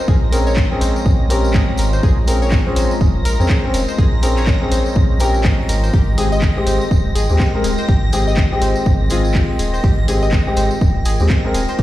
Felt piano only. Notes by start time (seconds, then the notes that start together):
0.32 C4 C#4 G#4
0.71 C4 C#4 G#4
1.29 C4 C#4 G4
2.27 C4 C#4 G#4
2.66 C4 C#4 G#4
3.39 C4 C#4 G#4
3.64 C4 C#4 C5
4.22 C4 C#4 G#4
4.61 C4 C#4 G#4
5.20 C4 C#4 G4
6.18 G#3 C4 G4
6.56 G#3 C4 G4
7.30 G#3 C4 G4
7.54 G#3 C4 A#4
8.13 G#3 C4 G4
8.51 G#3 C4 G4
9.10 G#3 C4 F4
10.08 G#3 C4 G4
10.47 G#3 C4 G4
11.20 G#3 C4 G4
11.44 G#3 C4 A#4